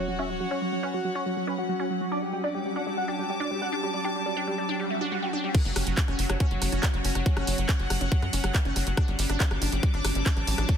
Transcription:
Already playing: F#3 C#4 F#4 C#5 F#5, sub drop
0.08 F#3 F#4
0.19 C#4 E5
0.30 F#3 F#4
0.40 F#3 F#4
0.51 C#4 C#5
0.62 F#3 F#4
0.72 F#3 F#4
0.83 C#4 B4
0.94 F#3 F#4
1.05 F#3 F#4
1.15 C#4 C#5
1.26 F#3 F#4
1.37 F#3 F#4
1.47 C#4 B4
1.58 F#3 F#4
1.69 F#3 F#4
1.79 C#4 F#4
1.90 F#3 F#4
2.01 F#3 F#4
2.12 D4 D5
2.22 G3 G4
2.33 G3 G4
2.44 D4 D5 D6
2.55 G3 G4
2.65 G3 G4
2.75 D4 F#5 A5
2.87 G3 G4
2.97 G3 F#5
3.08 D4 G4
3.19 G3 G4
3.29 G3 G4
3.40 D4 D5
3.51 G3 G4
3.62 G3 F#5
3.72 D4 G4
3.83 G3 G4
3.94 G3 D5
4.04 D4 G4
4.15 G3 G4
4.26 G3 D5
4.37 D4 G4
4.47 G3 G4
4.58 G3 D5
4.69 D4 G4, swell
4.80 G3 G4
4.90 G3 E5
5.01 D4 G4
5.12 G3 F#5
5.22 G3 G4
5.33 D4 G4
5.44 G3 G4
5.55 F#3 A#3 C#4 F#4, kick, cross-stick, closed hi-hat, crash
5.65 F#1 F#3 A#3, closed hi-hat
5.76 F#1 C#4 C#5, cross-stick, open hi-hat
5.87 F#1 F#3, closed hi-hat
5.97 F#3, kick, clap, closed hi-hat
6.08 F#1 C#4, cross-stick, closed hi-hat
6.19 F#1 F#3, open hi-hat
6.30 F#1 F#3 C#4, cross-stick, closed hi-hat
6.40 C#4, kick, closed hi-hat
6.51 F#1 F#3, closed hi-hat
6.62 F#1 F#3, cross-stick, open hi-hat
6.72 F#1 C#4, closed hi-hat
6.83 kick, cross-stick, clap, closed hi-hat
6.94 F#1 F#3, closed hi-hat
7.05 F#1 C#4, open hi-hat
7.09 F#5
7.15 F#1 F#3, cross-stick, closed hi-hat
7.26 F#3 C#4, kick, closed hi-hat
7.37 F#1 C#4, cross-stick, closed hi-hat
7.47 F#1 F#3, open hi-hat
7.58 F#1 F#3, closed hi-hat
7.69 C#4, kick, cross-stick, clap, closed hi-hat
7.79 F#1 F#3, closed hi-hat
7.90 F#1 F#3, cross-stick, open hi-hat
8.01 F#1 C#4, closed hi-hat
8.12 F#3, kick, closed hi-hat
8.22 F#2 F#3, cross-stick, closed hi-hat
8.33 F#1 C#4, open hi-hat
8.44 F#1 F#3, cross-stick, closed hi-hat
8.55 F#3, kick, clap, closed hi-hat
8.65 F#1 C#4, closed hi-hat
8.76 F#1 F#3, cross-stick, open hi-hat
8.87 F#1 F#3, closed hi-hat
8.97 D4, kick, cross-stick, closed hi-hat
9.08 G1 G3, closed hi-hat
9.16 G1 G3 D6, open hi-hat
9.29 G1 D4, cross-stick, closed hi-hat
9.40 G3, kick, clap, closed hi-hat
9.51 G1 G3, cross-stick, closed hi-hat
9.62 G1 D4, open hi-hat
9.72 G1 G3, closed hi-hat
9.83 G3, kick, cross-stick, closed hi-hat
9.94 G1 D4, closed hi-hat
10.01 G1 G3 A5, cross-stick, open hi-hat
10.15 G1 G3, closed hi-hat
10.26 D4, kick, clap, closed hi-hat
10.37 A1 G3, cross-stick, closed hi-hat
10.47 A1 G3, open hi-hat
10.58 A1 D4, cross-stick, closed hi-hat
10.69 G3, kick, closed hi-hat

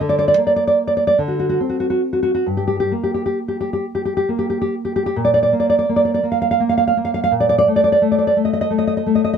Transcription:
0.01 D3
0.09 D5
0.19 D5
0.28 D5
0.38 A#3
0.47 D5
0.56 D5
0.67 D5
0.87 D5
0.97 D5
1.07 D5
1.19 D3
1.28 F#4
1.39 F#4
1.49 F#4
1.60 C4
1.69 F#4
1.80 F#4
1.90 F#4
2.13 F#4
2.23 F#4
2.35 F#4
2.46 G2
2.57 G4
2.67 G4
2.80 G4
2.92 A#3
3.03 G4
3.14 G4
3.26 G4
3.48 G4
3.61 G4
3.73 G4
3.95 G4
4.05 G4
4.17 G4
4.29 A#3
4.39 G4
4.50 G4
4.62 G4
4.85 G4
4.96 G4
5.06 G4
5.16 A#2
5.25 D5
5.34 D5
5.43 D5
5.53 A#3
5.60 D5
5.70 D5
5.79 D5
5.89 A#3
5.96 D5
6.05 D5
6.14 D5
6.23 A#3
6.32 F5
6.42 F5
6.51 F5
6.60 A#3
6.69 F5
6.78 F5
6.87 F5
6.97 A#3
7.05 F5
7.14 F5
7.24 F5
7.31 A#2
7.40 D5
7.49 D5
7.58 D5
7.68 A3
7.76 D5
7.84 D5
7.92 D5
8.02 A3
8.12 D5
8.18 D5
8.27 D5
8.37 A3
8.45 D#5
8.53 D#5
8.61 D#5
8.70 A3
8.78 D#5
8.87 D#5
8.97 D#5
9.06 A3
9.15 D#5
9.24 D#5
9.33 D#5

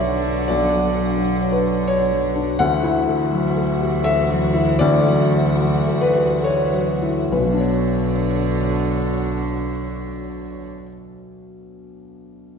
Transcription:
Already playing: B1 D3 F#3 D4 F#4 B4 C#5 E5 F#5
0.03 F#3
0.26 D4
0.48 B1 D5
0.73 F#3
0.95 D5
1.17 F#3
1.42 C#5
1.52 B4
1.66 B4
1.87 C#5
2.12 F#3
2.36 D4
2.59 D2 E3 E4 F#4 F#5
2.83 E4
3.07 A4
3.31 F#3
3.56 A4
3.80 G4
4.04 A4 E5
4.30 F#3
4.54 E4
4.79 D2 D5
5.07 F#3
5.34 A4
5.60 F#3
5.87 A4
6.01 B4
6.15 G4
6.43 A4 C#5
6.72 F#3
7.02 E4
7.32 B1 D4 F#4 B4 C#5
7.36 B2 D3
7.45 F#3
7.53 D4
7.59 C#5

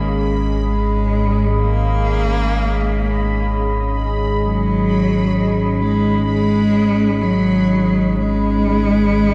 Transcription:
Already playing: G#1 G#2 A#3 C#4 G#4 D#5 B5
0.65 G#3
1.59 A#3
4.42 F#3
5.82 G#3
6.28 G#3
7.22 F#3
8.17 G#3

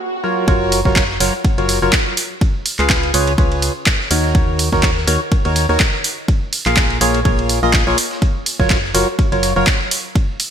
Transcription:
Already playing: swell
0.24 F#3 F4 F#4 A#4 C#5
0.48 F#1 F#3 F4 F#4 A#4 C#5, kick, ride
0.72 open hi-hat, ride
0.85 F#1 F#3 F4 F#4 A#4 C#5, kick, snare
0.96 kick, snare, clap, ride
1.10 snare
1.20 F#1 F#3 F4 F#4 A#4 C#5, snare, open hi-hat, ride
1.45 kick, ride
1.58 F#1 F#3 F4 F#4 A#4 C#5, ride
1.69 snare, open hi-hat, ride
1.82 F#1 F#3 F4 F#4 A#4 C#5
1.93 kick, snare, clap, ride
2.06 snare
2.17 open hi-hat, ride
2.41 kick, ride
2.66 open hi-hat, ride
2.79 C#2 C#3 F4 G#4 B4 F5, clap, ride
2.90 kick, snare, clap, ride
3.03 ride
3.14 C#2 C#3 F4 G#4 B4 C#5, open hi-hat, ride
3.27 ride
3.38 C#2 C#3 F4 G#4 B4 C#5, kick, ride
3.52 ride
3.62 open hi-hat, ride
3.86 kick, snare, clap, ride
4.00 snare
4.11 D#2 D#3 D#4 F#4 A#4 C#5, open hi-hat, ride
4.24 snare
4.35 kick, ride
4.59 open hi-hat, ride
4.72 D#2 D#3 D#4 F#4 A#4 C#5, kick, snare
4.83 kick, snare, clap, ride
4.97 snare
5.07 D#2 D#3 D#4 F#4 A#4 C#5, snare, open hi-hat, ride
5.32 kick, ride
5.45 D#2 D#3 D#4 F#4 A#4 C#5, ride
5.56 snare, open hi-hat, ride
5.69 D#2 D#3 D#4 F#4 A#4 C#5
5.80 kick, snare, clap, ride
5.94 snare
6.04 open hi-hat, ride
6.28 kick, ride
6.53 open hi-hat, ride
6.66 A#1 A#3 F4 G#4 A#4 F5, clap, ride
6.77 kick, snare, clap, ride
6.90 ride
7.01 A#1 A#3 F4 G#4 A#4 C#5, open hi-hat, ride
7.14 ride
7.25 A#1 A#3 F4 G#4 A#4 C#5, kick, ride
7.39 ride
7.49 open hi-hat, ride
7.63 A#1 A#3 F4 G#4 A#4 D#5
7.73 kick, snare, clap, ride
7.87 A#1 A#3 F4 G#4 A#4 C#5, snare
7.98 open hi-hat, ride
8.11 snare
8.22 kick, ride
8.46 open hi-hat, ride
8.59 F#1 F#3 F4 F#4 A#4 C#5, kick, snare
8.70 kick, snare, clap, ride
8.84 snare
8.94 F#1 F#3 F4 F#4 A#4 C#5, snare, open hi-hat, ride
9.19 kick, ride
9.32 F#1 F#3 F4 F#4 A#4 C#5, ride
9.43 snare, open hi-hat, ride
9.56 F#1 F#3 F4 F#4 A#4 C#5
9.67 kick, snare, clap, ride
9.81 snare
9.91 open hi-hat, ride
10.15 kick, ride
10.40 open hi-hat, ride

